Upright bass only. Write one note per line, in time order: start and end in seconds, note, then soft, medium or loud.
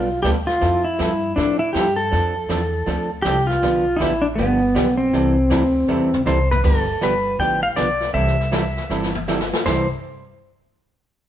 0.00 0.23 B1 medium
0.24 0.61 D2 medium
0.62 0.98 F2 medium
1.00 1.36 G2 medium
1.37 1.74 A2 medium
1.75 2.11 G2 medium
2.12 2.49 F2 medium
2.50 2.86 E2 medium
2.87 3.24 D2 medium
3.25 3.61 C2 loud
3.62 3.99 B1 medium
4.00 4.37 A1 medium
4.38 4.74 G1 medium
4.75 5.12 B1 medium
5.13 5.50 C2 medium
5.51 5.87 D2 medium
5.88 6.25 E2 medium
6.26 6.63 C2 medium
6.64 6.94 G1 medium
7.02 7.34 G1 medium
7.39 7.71 A1 medium
7.77 8.09 B1 medium
8.14 8.75 C2 medium
8.90 9.50 G1 medium
9.66 9.88 C2 medium